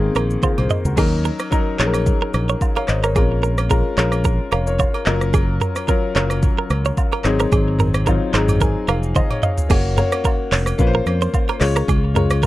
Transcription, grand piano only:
0.00 0.82 D#3 medium
0.00 0.82 A#3 medium
0.00 0.86 C4 medium
0.00 0.41 G#4 loud
0.43 0.57 F4 medium
0.43 0.56 G#4 medium
0.58 0.84 G#4 medium
0.58 0.84 C5 medium
0.85 1.11 F#4 medium
0.85 0.97 A#4 medium
0.96 1.44 F#3 medium
0.96 1.44 C#4 medium
0.96 1.45 D#4 medium
0.96 1.45 A#4 medium
1.50 1.75 F#3 medium
1.50 1.75 C#4 medium
1.50 1.76 D#4 medium
1.50 1.76 A#4 medium
1.78 2.72 F#3 medium
1.78 2.73 C#4 medium
1.78 2.73 D#4 medium
1.78 1.87 G#4 medium
1.86 2.65 A#4 medium
2.76 2.88 C#5 medium
2.76 2.88 F5 medium
2.88 3.03 C5 medium
2.88 3.03 D#5 medium
3.04 3.15 A#4 medium
3.04 3.29 C#5 medium
3.14 3.62 G#3 medium
3.14 3.23 C4 medium
3.14 3.63 F4 medium
3.14 3.63 A#4 medium
3.22 3.66 C#4 medium
3.69 3.93 G#3 medium
3.69 3.93 C#4 medium
3.69 3.94 F4 medium
3.69 3.94 A#4 medium
3.96 4.91 G#3 medium
3.96 4.91 C#4 medium
3.96 4.92 F4 medium
3.96 4.53 A#4 medium
4.52 4.65 C#5 medium
4.52 4.66 F5 medium
4.67 4.92 A#4 medium
4.67 4.93 C#5 medium
4.94 5.06 A#4 medium
5.05 5.77 F#3 medium
5.05 5.77 C#4 medium
5.05 5.78 F4 medium
5.05 5.78 A#4 loud
5.87 6.11 F#3 medium
5.87 6.12 C#4 medium
5.87 6.12 F4 medium
5.87 6.13 A#4 medium
6.14 7.09 F#3 medium
6.14 7.09 C#4 medium
6.14 7.10 F4 medium
6.14 7.10 A#4 medium
7.24 7.95 F#3 medium
7.24 7.95 C4 medium
7.24 7.96 D#4 medium
7.24 7.96 G#4 loud
8.05 8.29 F#3 medium
8.05 8.30 C4 medium
8.05 8.30 D#4 medium
8.05 8.31 F4 medium
8.32 9.27 F#3 medium
8.32 9.28 C4 medium
8.32 9.28 D#4 medium
8.32 9.28 G#4 medium
8.32 8.59 A#5 medium
8.61 8.86 G#5 medium
8.88 9.14 F5 medium
9.16 9.30 D#5 medium
9.31 9.42 C#5 medium
9.43 9.68 F5 medium
9.69 9.93 A#3 medium
9.69 9.94 C#4 medium
9.69 9.94 F#4 medium
9.69 9.94 C#5 medium
9.96 10.76 A#3 medium
9.96 10.77 C#4 medium
9.96 10.79 F#4 medium
9.96 10.80 C#5 medium
10.78 11.49 A#3 medium
10.78 11.50 C#4 medium
10.78 11.50 F4 medium
10.78 10.87 B4 medium
10.87 11.54 C5 loud
11.59 12.07 G#3 medium
11.59 12.08 C#4 medium
11.59 12.08 F4 medium
11.59 12.09 C#5 loud
12.14 12.46 G#3 medium
12.14 12.46 C#4 medium
12.14 12.46 F4 medium
12.14 12.46 C#5 medium

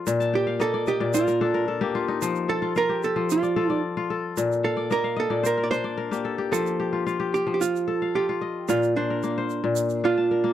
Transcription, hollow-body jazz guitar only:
0.35 0.60 G4 medium
0.61 0.88 A4 loud
0.88 1.13 G4 medium
1.14 1.64 F4 medium
2.49 2.77 A4 medium
2.77 3.04 A#4 loud
3.04 3.29 A4 medium
3.32 3.81 F4 medium
4.64 4.92 A4 medium
4.92 5.19 A#4 loud
5.20 5.46 A4 loud
5.46 5.96 A#4 medium
5.64 5.70 D5 medium
5.71 6.48 C5 loud
6.53 7.03 A4 medium
7.34 7.53 G4 medium
7.54 7.61 G4 medium
7.61 8.17 F4 medium
8.15 8.71 G4 medium
8.70 8.95 F4 medium
8.96 10.00 D4 medium
10.05 10.53 F4 medium

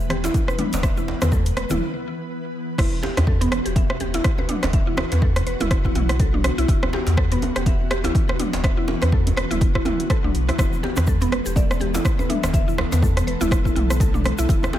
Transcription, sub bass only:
0.00 0.29 E1 medium
0.73 1.14 E1 loud
1.22 1.51 E2 loud
1.56 1.64 E1 loud
1.70 1.81 E1 medium
2.78 2.86 E1 loud
3.17 3.46 E2 loud
3.52 3.60 E1 loud
3.66 4.19 E1 medium
4.63 5.04 E1 loud
5.12 5.41 E2 loud
5.46 5.55 E1 loud
5.60 5.90 E1 medium
5.95 6.51 B1 medium
6.58 6.65 B1 medium
6.68 6.77 E1 loud
7.07 7.36 E2 loud
7.42 7.50 E1 loud
7.56 8.09 E1 medium
8.53 8.95 E1 loud
9.02 9.31 E2 loud
9.37 9.45 E1 loud
9.51 9.80 E1 medium
10.24 10.31 B1 loud
10.34 10.51 B1 medium
10.58 10.67 E1 loud
10.97 11.26 E2 loud
11.31 11.40 E1 loud
11.46 11.99 E1 medium
12.43 12.85 E1 loud
12.92 13.22 E2 loud
13.27 13.35 E1 loud
13.41 13.70 E1 medium
13.76 14.31 B1 medium
14.39 14.46 B1 medium
14.49 14.57 E1 loud

